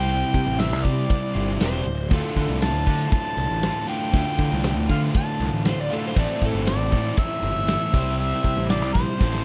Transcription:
Already playing: picked electric bass C2, distorted electric guitar C3 G3 C4 E4 G4 C5, harmonica G5
0.09 ride
0.34 picked electric bass C3, kick, ride
0.47 picked electric bass A1
0.57 distorted electric guitar C3 G3 C4 E4 G4 C5, harmonica E5, snare, ride
0.73 picked electric bass C2
0.84 picked electric bass C3, harmonica D5, kick, ride
1.10 kick, ride
1.34 picked electric bass G1, distorted electric guitar C3 G3 C4 E4 G4 C5, ride
1.59 picked electric bass E1, overdriven electric guitar C3 G3 C4 E4 G4 C5, electric slide guitar C5, snare, ride
1.85 picked electric bass D1, ride
2.10 distorted electric guitar D2 A2 D3 A3 F4, picked electric bass D2, electric slide guitar A4, kick, crash
2.36 picked electric bass D3, electric slide guitar A4, kick, ride
2.49 picked electric bass C2
2.62 harmonica A5, snare, ride
2.74 picked electric bass D2
2.85 distorted electric guitar D2 A2 D3 A3 F4, picked electric bass D3, kick, ride
3.12 harmonica A5, kick, ride
3.37 picked electric bass C2, ride
3.50 picked electric bass A1
3.62 distorted electric guitar D2 A2 D3 A3 F4, snare, ride
3.87 overdriven electric guitar D2 A2 D3 A3 F4, harmonica G5, ride
4.12 distorted electric guitar D2 A2 D3 A3 F4, picked electric bass D2, kick, ride
4.39 picked electric bass D3, kick, ride
4.52 picked electric bass C2
4.64 snare, ride
4.77 picked electric bass D2
4.88 distorted electric guitar D2 A2 D3 A3 F4, picked electric bass D3, harmonica F5, kick, ride
5.14 harmonica A5, kick, ride
5.40 picked electric bass C2, ride
5.53 picked electric bass A1
5.64 distorted electric guitar D2 A2 D3 A3 F4, snare, ride
5.68 electric slide guitar C5
5.81 electric slide guitar D5
5.90 overdriven electric guitar D2 A2 D3 A3 F4, electric slide guitar A4, ride
6.07 electric slide guitar C5
6.15 picked electric bass A1, distorted electric guitar A2 E3 A3 C4 E4 A4, kick, ride
6.19 electric slide guitar D5
6.42 picked electric bass A2, electric slide guitar A4, kick, ride
6.53 picked electric bass G1
6.67 harmonica D5, snare, ride
6.79 picked electric bass A1
6.92 picked electric bass A2, distorted electric guitar A2 E3 A3 C4 E4 A4, kick, ride
7.17 harmonica E5, kick, ride
7.43 picked electric bass G1, ride
7.55 picked electric bass G1
7.68 distorted electric guitar A2 E3 A3 C4 E4 A4, snare, ride
7.92 picked electric bass C2, distorted electric guitar C3 G3 C4 E4 G4 C5, kick, crash
8.19 harmonica E5
8.44 picked electric bass C3, kick, ride
8.57 picked electric bass A1
8.68 distorted electric guitar C3 G3 C4 E4 G4 C5, harmonica D5, snare, ride
8.82 picked electric bass C2
8.93 picked electric bass A#1, harmonica C5, kick, ride
9.19 picked electric bass A1, distorted electric guitar A2 E3 A3 C4 E4 A4, kick, snare
9.34 snare

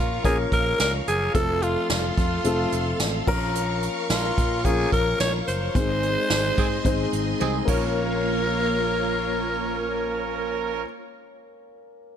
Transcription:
Already playing: fretless electric bass A#2, grand piano F3 A#3 C#4 A#4, alto saxophone F4, string machine A#4 F5 C#6
0.24 fretless electric bass A#1, grand piano F3 A#3 C#4 A#4, alto saxophone G#4, kick, closed hi-hat
0.52 fretless electric bass A#1, alto saxophone A#4, kick, closed hi-hat
0.80 fretless electric bass C#2, alto saxophone A#4, snare, closed hi-hat, tambourine
1.07 fretless electric bass F#1, alto saxophone G#4, closed hi-hat
1.34 fretless electric bass F1, grand piano F3 A3 C4 A4, string machine A4 F5 C6, alto saxophone A4, kick, closed hi-hat
1.62 alto saxophone F4, closed hi-hat
1.90 fretless electric bass F1, alto saxophone F4, snare, closed hi-hat, tambourine
2.17 fretless electric bass F2, kick, closed hi-hat
2.44 fretless electric bass F1, grand piano F3 A3 C4 A4, closed hi-hat
2.72 fretless electric bass F1, closed hi-hat
3.00 fretless electric bass A1, snare, closed hi-hat, tambourine
3.27 fretless electric bass A#1, grand piano F3 A#3 C#4 A#4, string machine A#4 C#6, kick, crash
3.55 closed hi-hat
3.83 closed hi-hat
4.10 fretless electric bass A#1, alto saxophone F4, snare, closed hi-hat, tambourine
4.38 fretless electric bass A#2, kick, closed hi-hat
4.65 fretless electric bass A#1, grand piano F3 A#3 C#4 F4, alto saxophone G#4, kick, closed hi-hat
4.92 fretless electric bass A#1, alto saxophone A#4, kick, closed hi-hat
5.20 fretless electric bass A#1, alto saxophone C#5, snare, closed hi-hat, tambourine
5.47 fretless electric bass F#1, alto saxophone C5, closed hi-hat
5.75 fretless electric bass G#1, grand piano G#3 C4 D#4 C5, string machine G#4 D#5 C6, kick, closed hi-hat
6.03 closed hi-hat
6.30 fretless electric bass G#1, snare, closed hi-hat, tambourine
6.58 fretless electric bass G#2, horn section D#3 C4 G#4, kick, closed hi-hat
6.85 fretless electric bass G#1, grand piano G#3 C4 D#4 C5, kick, closed hi-hat
7.13 fretless electric bass G#1, closed hi-hat
7.40 fretless electric bass C2, horn section D#3 C4 G#4, high tom
7.65 fretless electric bass A#1, horn section F3 C#4 A#4, grand piano A#3 C#4 F4, string machine A#3 F4 C#5, alto saxophone A#4, kick, crash
7.70 grand piano C#5

